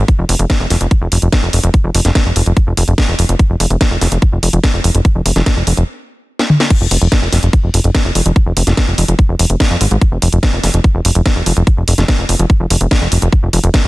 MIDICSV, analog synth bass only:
0, 0, Header, 1, 2, 480
1, 0, Start_track
1, 0, Key_signature, -4, "minor"
1, 0, Tempo, 413793
1, 97, Time_signature, 4, 2, 24, 8
1, 16098, End_track
2, 0, Start_track
2, 0, Title_t, "Analog synth bass"
2, 0, Program_c, 0, 38
2, 217, Note_on_c, 0, 29, 85
2, 286, Note_off_c, 0, 29, 0
2, 337, Note_on_c, 0, 29, 102
2, 406, Note_off_c, 0, 29, 0
2, 457, Note_on_c, 0, 29, 89
2, 526, Note_off_c, 0, 29, 0
2, 697, Note_on_c, 0, 29, 88
2, 766, Note_off_c, 0, 29, 0
2, 817, Note_on_c, 0, 29, 104
2, 886, Note_off_c, 0, 29, 0
2, 937, Note_on_c, 0, 29, 92
2, 1006, Note_off_c, 0, 29, 0
2, 1177, Note_on_c, 0, 29, 90
2, 1246, Note_off_c, 0, 29, 0
2, 1297, Note_on_c, 0, 29, 100
2, 1366, Note_off_c, 0, 29, 0
2, 1417, Note_on_c, 0, 29, 92
2, 1486, Note_off_c, 0, 29, 0
2, 1657, Note_on_c, 0, 29, 89
2, 1726, Note_off_c, 0, 29, 0
2, 1777, Note_on_c, 0, 29, 97
2, 1846, Note_off_c, 0, 29, 0
2, 1897, Note_on_c, 0, 29, 94
2, 1966, Note_off_c, 0, 29, 0
2, 2137, Note_on_c, 0, 29, 86
2, 2206, Note_off_c, 0, 29, 0
2, 2257, Note_on_c, 0, 29, 104
2, 2326, Note_off_c, 0, 29, 0
2, 2377, Note_on_c, 0, 29, 92
2, 2446, Note_off_c, 0, 29, 0
2, 2617, Note_on_c, 0, 29, 88
2, 2686, Note_off_c, 0, 29, 0
2, 2737, Note_on_c, 0, 29, 100
2, 2806, Note_off_c, 0, 29, 0
2, 2857, Note_on_c, 0, 29, 88
2, 2926, Note_off_c, 0, 29, 0
2, 3097, Note_on_c, 0, 29, 88
2, 3166, Note_off_c, 0, 29, 0
2, 3217, Note_on_c, 0, 29, 101
2, 3286, Note_off_c, 0, 29, 0
2, 3337, Note_on_c, 0, 29, 92
2, 3406, Note_off_c, 0, 29, 0
2, 3577, Note_on_c, 0, 29, 86
2, 3646, Note_off_c, 0, 29, 0
2, 3697, Note_on_c, 0, 29, 97
2, 3766, Note_off_c, 0, 29, 0
2, 3817, Note_on_c, 0, 29, 95
2, 3886, Note_off_c, 0, 29, 0
2, 4057, Note_on_c, 0, 29, 87
2, 4126, Note_off_c, 0, 29, 0
2, 4177, Note_on_c, 0, 29, 103
2, 4246, Note_off_c, 0, 29, 0
2, 4297, Note_on_c, 0, 29, 92
2, 4366, Note_off_c, 0, 29, 0
2, 4537, Note_on_c, 0, 29, 86
2, 4606, Note_off_c, 0, 29, 0
2, 4657, Note_on_c, 0, 29, 101
2, 4726, Note_off_c, 0, 29, 0
2, 4777, Note_on_c, 0, 29, 89
2, 4846, Note_off_c, 0, 29, 0
2, 5017, Note_on_c, 0, 29, 90
2, 5086, Note_off_c, 0, 29, 0
2, 5136, Note_on_c, 0, 29, 98
2, 5206, Note_off_c, 0, 29, 0
2, 5257, Note_on_c, 0, 29, 93
2, 5326, Note_off_c, 0, 29, 0
2, 5497, Note_on_c, 0, 29, 83
2, 5566, Note_off_c, 0, 29, 0
2, 5617, Note_on_c, 0, 29, 100
2, 5686, Note_off_c, 0, 29, 0
2, 5737, Note_on_c, 0, 29, 97
2, 5806, Note_off_c, 0, 29, 0
2, 5977, Note_on_c, 0, 29, 88
2, 6046, Note_off_c, 0, 29, 0
2, 6097, Note_on_c, 0, 29, 100
2, 6166, Note_off_c, 0, 29, 0
2, 6217, Note_on_c, 0, 29, 90
2, 6286, Note_off_c, 0, 29, 0
2, 6457, Note_on_c, 0, 29, 86
2, 6526, Note_off_c, 0, 29, 0
2, 6577, Note_on_c, 0, 29, 100
2, 6646, Note_off_c, 0, 29, 0
2, 6697, Note_on_c, 0, 29, 92
2, 6766, Note_off_c, 0, 29, 0
2, 7897, Note_on_c, 0, 29, 85
2, 7966, Note_off_c, 0, 29, 0
2, 8017, Note_on_c, 0, 29, 102
2, 8086, Note_off_c, 0, 29, 0
2, 8137, Note_on_c, 0, 29, 94
2, 8206, Note_off_c, 0, 29, 0
2, 8377, Note_on_c, 0, 29, 85
2, 8446, Note_off_c, 0, 29, 0
2, 8498, Note_on_c, 0, 29, 102
2, 8566, Note_off_c, 0, 29, 0
2, 8618, Note_on_c, 0, 29, 92
2, 8686, Note_off_c, 0, 29, 0
2, 8858, Note_on_c, 0, 29, 89
2, 8926, Note_off_c, 0, 29, 0
2, 8978, Note_on_c, 0, 29, 105
2, 9046, Note_off_c, 0, 29, 0
2, 9098, Note_on_c, 0, 29, 96
2, 9166, Note_off_c, 0, 29, 0
2, 9338, Note_on_c, 0, 29, 87
2, 9407, Note_off_c, 0, 29, 0
2, 9458, Note_on_c, 0, 29, 98
2, 9527, Note_off_c, 0, 29, 0
2, 9578, Note_on_c, 0, 29, 94
2, 9647, Note_off_c, 0, 29, 0
2, 9817, Note_on_c, 0, 29, 90
2, 9886, Note_off_c, 0, 29, 0
2, 9938, Note_on_c, 0, 29, 105
2, 10007, Note_off_c, 0, 29, 0
2, 10057, Note_on_c, 0, 29, 90
2, 10126, Note_off_c, 0, 29, 0
2, 10298, Note_on_c, 0, 29, 89
2, 10366, Note_off_c, 0, 29, 0
2, 10417, Note_on_c, 0, 29, 102
2, 10486, Note_off_c, 0, 29, 0
2, 10538, Note_on_c, 0, 29, 91
2, 10606, Note_off_c, 0, 29, 0
2, 10778, Note_on_c, 0, 29, 88
2, 10846, Note_off_c, 0, 29, 0
2, 10897, Note_on_c, 0, 29, 102
2, 10966, Note_off_c, 0, 29, 0
2, 11018, Note_on_c, 0, 29, 88
2, 11086, Note_off_c, 0, 29, 0
2, 11257, Note_on_c, 0, 41, 85
2, 11326, Note_off_c, 0, 41, 0
2, 11378, Note_on_c, 0, 32, 101
2, 11446, Note_off_c, 0, 32, 0
2, 11498, Note_on_c, 0, 32, 96
2, 11566, Note_off_c, 0, 32, 0
2, 11737, Note_on_c, 0, 29, 89
2, 11806, Note_off_c, 0, 29, 0
2, 11858, Note_on_c, 0, 29, 101
2, 11927, Note_off_c, 0, 29, 0
2, 11978, Note_on_c, 0, 29, 91
2, 12046, Note_off_c, 0, 29, 0
2, 12218, Note_on_c, 0, 29, 86
2, 12286, Note_off_c, 0, 29, 0
2, 12338, Note_on_c, 0, 29, 99
2, 12406, Note_off_c, 0, 29, 0
2, 12457, Note_on_c, 0, 29, 90
2, 12526, Note_off_c, 0, 29, 0
2, 12697, Note_on_c, 0, 29, 91
2, 12766, Note_off_c, 0, 29, 0
2, 12817, Note_on_c, 0, 29, 105
2, 12886, Note_off_c, 0, 29, 0
2, 12937, Note_on_c, 0, 29, 95
2, 13006, Note_off_c, 0, 29, 0
2, 13177, Note_on_c, 0, 29, 85
2, 13246, Note_off_c, 0, 29, 0
2, 13297, Note_on_c, 0, 29, 96
2, 13366, Note_off_c, 0, 29, 0
2, 13417, Note_on_c, 0, 29, 96
2, 13486, Note_off_c, 0, 29, 0
2, 13657, Note_on_c, 0, 29, 87
2, 13726, Note_off_c, 0, 29, 0
2, 13777, Note_on_c, 0, 29, 100
2, 13846, Note_off_c, 0, 29, 0
2, 13897, Note_on_c, 0, 29, 89
2, 13966, Note_off_c, 0, 29, 0
2, 14137, Note_on_c, 0, 29, 87
2, 14206, Note_off_c, 0, 29, 0
2, 14257, Note_on_c, 0, 29, 101
2, 14326, Note_off_c, 0, 29, 0
2, 14377, Note_on_c, 0, 29, 91
2, 14446, Note_off_c, 0, 29, 0
2, 14617, Note_on_c, 0, 29, 85
2, 14686, Note_off_c, 0, 29, 0
2, 14737, Note_on_c, 0, 29, 97
2, 14806, Note_off_c, 0, 29, 0
2, 14857, Note_on_c, 0, 29, 93
2, 14926, Note_off_c, 0, 29, 0
2, 15097, Note_on_c, 0, 29, 85
2, 15166, Note_off_c, 0, 29, 0
2, 15217, Note_on_c, 0, 29, 96
2, 15286, Note_off_c, 0, 29, 0
2, 15337, Note_on_c, 0, 29, 94
2, 15406, Note_off_c, 0, 29, 0
2, 15577, Note_on_c, 0, 29, 88
2, 15646, Note_off_c, 0, 29, 0
2, 15697, Note_on_c, 0, 29, 102
2, 15766, Note_off_c, 0, 29, 0
2, 15817, Note_on_c, 0, 29, 92
2, 15886, Note_off_c, 0, 29, 0
2, 16057, Note_on_c, 0, 29, 86
2, 16098, Note_off_c, 0, 29, 0
2, 16098, End_track
0, 0, End_of_file